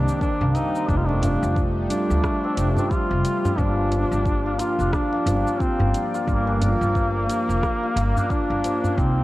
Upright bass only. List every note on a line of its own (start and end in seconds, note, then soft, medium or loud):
0.41 0.52 C2 medium
0.89 1.34 F1 medium
1.42 1.85 F1 medium
2.10 2.21 D2 medium
2.57 2.73 F1 medium
3.11 3.22 F1 medium
3.58 4.03 G1 loud
4.12 4.55 G1 medium
4.79 4.90 F1 medium
5.26 5.42 G1 medium
5.80 5.91 G1 medium
6.28 6.73 G1 loud
6.81 7.24 G1 medium
7.49 7.60 F1 medium
7.96 8.12 G1 medium
8.50 8.61 G1 medium
8.98 9.24 C2 loud